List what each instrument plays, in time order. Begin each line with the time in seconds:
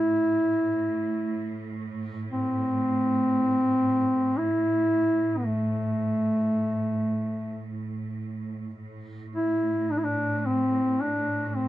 Already playing: string section A2, duduk E4
2.31 duduk C4
4.38 duduk E4
5.38 duduk B3
5.46 duduk A3
8.79 string section A2
9.36 duduk E4
9.91 duduk D4
9.98 duduk E4
10.04 duduk D4
10.39 duduk D4
10.46 duduk C4
11.01 duduk D4
11.47 duduk D4
11.56 duduk C4